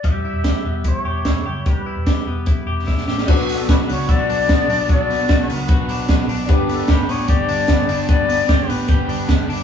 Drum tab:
CC |----------------|----------------|x---------------|----------------|
HH |x---x---x---x---|x---x---x-------|--o-x-o-x-o-x-o-|x-o-x-o-x-o-x-o-|
SD |----o-------o---|----o-------oooo|----o-------o---|----o-------o---|
BD |o---o---o---o---|o---o---o---o---|o---o---o---o---|o---o---o---o---|

CC |----------------|----------------|
HH |x-o-x-o-x-o-x-o-|x-o-x-o-x-o-x-o-|
SD |----o-------o---|----o-------o---|
BD |o---o---o---o---|o---o---o---o---|